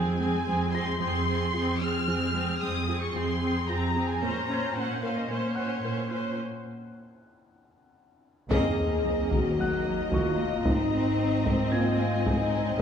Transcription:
Already playing: cello section F2, viola section C4 G#4, violin section G#5, grand piano G#6
0.19 synth pluck G#3, viola section C4 G#4
0.47 cello section F2, synth pluck G#3, viola section C4 G#4
0.73 viola section C4 G#4, synth pluck F4, violin section C6, grand piano A#6
1.00 cello section F2, synth pluck F3, viola section C4 G#4, violin section C6
1.27 viola section C4 G#4
1.54 cello section F2, viola section C4 G#4, synth pluck F4
1.81 synth pluck C4, viola section C4 G#4, violin section F6
2.08 cello section F2, synth pluck F3, viola section C4 G#4
2.34 synth pluck G#3, viola section C4 G#4
2.61 cello section F2, synth pluck G#3, viola section C4 G#4, violin section D#6
2.88 viola section C4 G#4, synth pluck F4
3.01 violin section C#6
3.14 cello section F2, synth pluck F3, viola section C4 G#4, violin section C6
3.42 viola section C4 G#4
3.68 cello section F2, viola section C4 G#4, synth pluck F4, violin section A#5
3.96 viola section C4 G#4, synth pluck C4
4.08 violin section G#5
4.20 cello section A#2, synth pluck A#3, viola section C#4 C5, violin section A#5
4.49 viola section C#4 C5, synth pluck C#4, grand piano G#6
4.75 cello section A#2, viola section C#4 C5, synth pluck C#4, violin section F#5
5.02 viola section C#4 C5, synth pluck A#4, violin section F5
5.17 violin section D#5
5.29 cello section A#2, synth pluck A#3, viola section C#4 C5, violin section C#5
5.55 viola section C#4 C5, grand piano F#5 F#6
5.83 cello section A#2, viola section C#4 C5, synth pluck A#4
6.10 viola section C#4 C5, synth pluck F4, violin section C5
8.50 double bass section D#2, synth pluck D#3, viola section A#3, cello section C4, french horn section G#4, violin section D#5 A#5, taiko, sub drop
9.05 synth pluck F#3
9.31 synth pluck D#3, french horn section F#4, taiko
9.58 synth pluck F#3, cello section A#3, grand piano F#5 F#6
9.85 cello section F#3, synth pluck A#3
10.11 synth pluck D#3, cello section G#3, french horn section F4, grand piano D#5 C#6, taiko
10.38 cello section A#3, synth pluck A#3
10.65 double bass section G#1, synth pluck G#3, cello section C4, viola section C4, french horn section D#4, taiko
10.92 cello section C4
11.20 synth pluck C4
11.46 synth pluck G#3, french horn section C4, taiko
11.72 cello section A#3, synth pluck C4, french horn section F4, violin section G#5, grand piano G#6
11.99 cello section G#3, synth pluck D#4
12.26 synth pluck G#3, french horn section D#4, taiko
12.53 synth pluck D#4
12.66 french horn section C4
12.78 viola section A#3, french horn section G#4, violin section F5

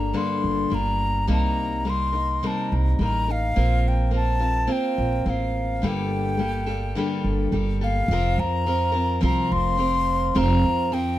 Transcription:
Already playing: upright bass G1, steel-string acoustic guitar G3 A#3 D4 A4, flute A#5
0.13 steel-string acoustic guitar G2 D3 G3 A#3 D4 A4, flute C6
0.44 upright bass G1
0.70 upright bass G1, steel-string acoustic guitar G3 A#3 D4
0.74 flute A#5
1.27 upright bass C2, steel-string acoustic guitar C3 G3 A#3 D#4 A#4
1.32 flute A#5
1.85 steel-string acoustic guitar G3 A#3 D#4 A#4
1.90 flute C6
2.12 steel-string acoustic guitar A#3 D#4 A#4
2.43 steel-string acoustic guitar C3 G3 A#3 D#4 A#4
2.47 flute A5
2.72 upright bass C2
2.99 upright bass A1, steel-string acoustic guitar G3 A#3 D#4 A#4, flute A#5
3.28 steel-string acoustic guitar A#3 D#4 A#4, flute F5
3.56 upright bass A#1, steel-string acoustic guitar A#3 C4 F4 A#4
3.88 flute G5
4.11 steel-string acoustic guitar A#3 C4 F4 A#4
4.16 flute A5
4.39 steel-string acoustic guitar C4 F4 A#4
4.67 steel-string acoustic guitar A#3 C4 F4 A#4
4.72 flute G5
4.98 upright bass A#1
5.26 upright bass A1, steel-string acoustic guitar A#3 C4 F4 A#4
5.30 flute F5
5.82 upright bass G1, steel-string acoustic guitar G2 D3 G3 A#3 G4 A4
5.88 flute G5
6.37 steel-string acoustic guitar G3 A#3 G4 A4
6.66 steel-string acoustic guitar G3 A#3 G4 A4
6.95 steel-string acoustic guitar G2 D3 G3 A#3 G4 A4
7.24 upright bass G1
7.52 upright bass G1, steel-string acoustic guitar G3 A#3 G4 A4
7.81 steel-string acoustic guitar G3 A#3 G4 A4, flute F5
8.08 upright bass F1, steel-string acoustic guitar F3 C4 F4
8.13 steel-string acoustic guitar A#4
8.38 upright bass F2, flute A#5
8.66 steel-string acoustic guitar F3 C4 F4 A#4
8.92 steel-string acoustic guitar C4 F4 A#4
9.21 upright bass C2, steel-string acoustic guitar F3 C4 F4 A#4, flute A#5
9.52 upright bass F1, flute C6
9.77 steel-string acoustic guitar F3 C4 F4 A#4
10.35 upright bass F1, steel-string acoustic guitar F3 C4 F4 A#4, flute A#5
10.65 upright bass F2
10.92 steel-string acoustic guitar F3 C4 F4 A#4, flute G5

